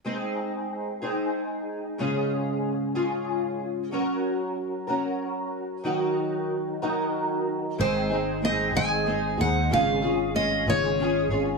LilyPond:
<<
  \new Staff \with { instrumentName = "Steel-string acoustic guitar" } { \time 6/8 \key aes \mixolydian \tempo 4. = 62 r2. | r2. | r2. | r2. |
c''4 ees''8 aes''4 ges''8 | f''4 ees''8 des''4 r8 | }
  \new Staff \with { instrumentName = "Twelve-string acoustic guitar" } { \time 6/8 \key aes \mixolydian <aes c' ees' aes'>4. <aes c' ees' aes'>4. | <aes, des aes des' f' aes'>4. <aes, des aes des' f' aes'>4. | <ges des' ges' bes'>4. <ges des' ges' bes'>4. | <ees ges ees' ges' bes'>4. <ees ges ees' ges' bes'>4. |
<aes, ees aes c' ees' aes'>8 <aes c' ees' aes'>8 <aes c' ees' aes'>8 <aes, ees aes c' ees' aes'>8 <aes c' ees' aes'>8 <aes c' ees' aes'>8 | <aes, des aes des' f' aes'>8 <aes des' f' aes'>8 <aes des' f' aes'>8 <aes, des aes des' f' aes'>8 <aes des' f' aes'>8 <aes des' f' aes'>8 | }
  \new Staff \with { instrumentName = "Fingered electric bass" } { \clef bass \time 6/8 \key aes \mixolydian r2. | r2. | r2. | r2. |
aes,,4. aes,,4 ees,8 | aes,,4. aes,,4 aes,,8 | }
>>